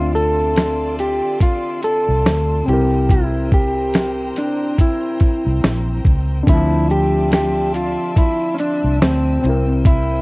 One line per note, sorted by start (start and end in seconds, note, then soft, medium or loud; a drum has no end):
0.00 1.19 D2 medium
0.00 2.61 D3 medium
0.00 2.63 C4 medium
0.00 0.11 F4 medium
0.00 2.64 F4 medium
0.00 2.66 F4 medium
0.00 2.64 D5 medium
0.00 2.64 E5 medium
0.00 2.64 C6 medium
0.00 6.43 E6 medium
0.15 0.95 A4 loud
0.15 shaker soft
0.56 snare loud
0.56 closed hi-hat medium
0.99 1.42 G4 medium
0.99 closed hi-hat soft
0.99 shaker soft
1.41 1.84 F4 medium
1.41 kick medium
1.41 closed hi-hat medium
1.83 2.69 A4 loud
1.83 closed hi-hat soft
1.83 shaker soft
2.09 2.23 C2 medium
2.25 2.61 D2 medium
2.25 snare loud
2.25 closed hi-hat medium
2.63 5.99 C3 medium
2.63 6.01 C4 medium
2.67 4.31 C2 medium
2.67 6.02 E4 medium
2.67 3.12 G4 medium
2.67 6.44 C5 medium
2.67 6.44 G5 medium
2.67 6.44 A#5 medium
2.67 shaker soft
2.73 6.04 A#4 medium
3.09 3.50 E4 medium
3.09 kick loud
3.09 closed hi-hat medium
3.52 4.40 G4 medium
3.52 kick medium
3.52 shaker soft
3.94 snare loud
3.94 closed hi-hat medium
4.36 4.80 D4 medium
4.36 closed hi-hat medium
4.36 shaker soft
4.78 6.02 E4 medium
4.78 kick medium
4.78 closed hi-hat medium
5.20 kick medium
5.20 closed hi-hat soft
5.20 shaker soft
5.47 5.61 C2 medium
5.64 5.99 A#1 medium
5.64 snare loud
5.64 closed hi-hat medium
6.05 6.41 C#2 medium
6.05 kick loud
6.05 shaker soft
6.43 9.37 D3 medium
6.43 9.39 C4 medium
6.43 kick loud
6.47 7.95 D2 loud
6.47 6.90 E4 medium
6.47 9.40 D5 medium
6.47 9.40 E5 medium
6.47 9.40 C6 medium
6.47 10.22 E6 medium
6.47 closed hi-hat medium
6.53 9.42 F3 medium
6.90 7.33 G4 loud
6.90 shaker soft
7.32 7.75 G4 loud
7.32 snare loud
7.32 closed hi-hat medium
7.74 8.18 F4 medium
7.74 closed hi-hat soft
7.74 shaker medium
8.16 8.55 E4 medium
8.16 kick loud
8.16 closed hi-hat medium
8.54 8.59 C#4 medium
8.54 closed hi-hat soft
8.54 shaker soft
8.60 9.02 D4 medium
8.84 8.98 C2 medium
9.02 9.37 D2 medium
9.02 9.65 C4 loud
9.02 snare loud
9.02 closed hi-hat medium
9.39 10.22 C3 medium
9.39 10.22 C4 medium
9.39 10.22 C5 medium
9.43 10.22 C2 medium
9.43 10.22 E4 medium
9.43 10.22 G5 medium
9.43 shaker medium
9.49 10.22 A#4 medium
9.85 10.22 E4 medium
9.85 kick loud
9.85 closed hi-hat medium